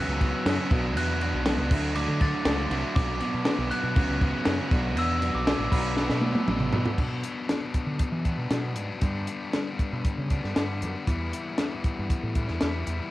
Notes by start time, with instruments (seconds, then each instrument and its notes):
Already playing: overdriven electric guitar C#3 F#3 B3 C#4, analog synth pad C#4 F#4 B4 F#5, glockenspiel F#6
0.08 fingered electric bass C#2
0.20 overdriven electric guitar C#3 F#3 B3 C#4, kick, crash
0.46 fingered electric bass F#2, overdriven electric guitar C#3 F#3 B3 C#4, snare, crash
0.70 fingered electric bass B1, overdriven electric guitar B2 F#3 B3 D4, analog synth pad D4 B4, kick, crash
0.96 fingered electric bass E2, overdriven electric guitar B2 F#3 B3 D4, glockenspiel F#6, crash
1.20 overdriven electric guitar B2 F#3 B3 D4, crash
1.34 fingered electric bass B1
1.45 overdriven electric guitar B2 F#3 B3 D4, snare, crash
1.58 fingered electric bass C#2
1.70 fingered electric bass D2, overdriven electric guitar D3 F#3 A3 D4, analog synth pad A4 F#5, kick, crash
1.95 overdriven electric guitar D3 F#3 A3 D4, glockenspiel D6, crash
2.08 fingered electric bass D3
2.21 overdriven electric guitar D3 F#3 A3 D4, glockenspiel A6, kick, crash
2.45 fingered electric bass C#2, overdriven electric guitar D3 F#3 A3 D4, snare, crash
2.71 fingered electric bass C2, overdriven electric guitar D3 F#3 A3 D4, crash
2.95 fingered electric bass B1, overdriven electric guitar B2 F#3 B3 D4, analog synth pad B4 F#5, glockenspiel D6, kick, crash
3.20 overdriven electric guitar B2 F#3 B3 D4, crash
3.34 fingered electric bass B2
3.45 overdriven electric guitar B2 F#3 B3 D4, snare, crash
3.58 fingered electric bass B1
3.71 overdriven electric guitar B2 F#3 B3 D4, glockenspiel F#6, crash
3.83 fingered electric bass B2
3.96 fingered electric bass C#2, overdriven electric guitar C#3 F#3 B3 C#4, analog synth pad C#4 F#4 F#5, kick, crash
4.09 fingered electric bass C#2
4.21 overdriven electric guitar C#3 F#3 B3 C#4, kick, crash
4.45 fingered electric bass F#2, overdriven electric guitar C#3 F#3 B3 C#4, snare, crash
4.70 fingered electric bass B1, overdriven electric guitar B2 F#3 B3 D4, analog synth pad D4, kick, crash
4.96 fingered electric bass E2, overdriven electric guitar B2 F#3 B3 D4, glockenspiel E6, crash
5.21 overdriven electric guitar B2 F#3 B3 D4, crash
5.34 fingered electric bass B1, glockenspiel D6
5.46 overdriven electric guitar B2 F#3 B3 D4, snare, crash
5.59 fingered electric bass A1
5.71 fingered electric bass B1, overdriven electric guitar B2 F#3 B3 D4, analog synth pad D4 B4, glockenspiel B5, kick, crash
5.97 overdriven electric guitar B2 F#3 B3 D4, snare
6.09 fingered electric bass B2, snare
6.21 overdriven electric guitar B2 F#3 B3 D4, high tom
6.35 high tom
6.48 fingered electric bass A1, overdriven electric guitar B2 F#3 B3 D4, mid tom
6.60 mid tom
6.73 fingered electric bass B2, overdriven electric guitar B2 F#3 B3 D4, floor tom
6.85 floor tom
6.98 overdriven electric guitar B2 F#3 B3 D4, fingered electric bass B2, kick, crash
7.23 overdriven electric guitar F#3 B3 D4, closed hi-hat
7.49 overdriven electric guitar B2 F#3 B3 D4, snare, closed hi-hat
7.74 kick, closed hi-hat
7.86 fingered electric bass D3
7.99 kick, closed hi-hat
8.12 fingered electric bass E3
8.24 overdriven electric guitar F#3 B3 D4, kick, closed hi-hat
8.38 fingered electric bass B2
8.51 overdriven electric guitar B2 F#3 B3 D4, fingered electric bass B2, snare, closed hi-hat
8.76 fingered electric bass G#2, overdriven electric guitar F#3 B3 D4, closed hi-hat
9.01 overdriven electric guitar G2 D3 G3 B3 D4, fingered electric bass G2, kick, closed hi-hat
9.27 overdriven electric guitar B3 D4, closed hi-hat
9.31 overdriven electric guitar G3
9.52 overdriven electric guitar G2 D3 G3 B3 D4, snare, closed hi-hat
9.79 kick, closed hi-hat
9.93 fingered electric bass B2
10.05 kick, closed hi-hat
10.18 fingered electric bass C#3
10.30 overdriven electric guitar G3 B3 D4, kick, closed hi-hat
10.44 fingered electric bass G2, snare
10.55 fingered electric bass G2, overdriven electric guitar D3 G3 B3 D4, snare, closed hi-hat
10.81 fingered electric bass F#2, overdriven electric guitar G3 B3 D4, closed hi-hat
11.07 fingered electric bass E2, overdriven electric guitar E3 G3 B3 E4, kick, closed hi-hat
11.33 overdriven electric guitar G3 B3 E4, closed hi-hat
11.58 overdriven electric guitar E3 G3 B3 E4, snare, closed hi-hat
11.84 kick, closed hi-hat
11.99 fingered electric bass G2
12.10 kick, closed hi-hat
12.23 fingered electric bass A2
12.35 overdriven electric guitar G3 B3 E4, kick, closed hi-hat
12.48 fingered electric bass E2, snare
12.61 fingered electric bass E2, overdriven electric guitar E3 G3 B3 E4, snare, closed hi-hat
12.87 fingered electric bass E2, overdriven electric guitar G3 B3 E4, closed hi-hat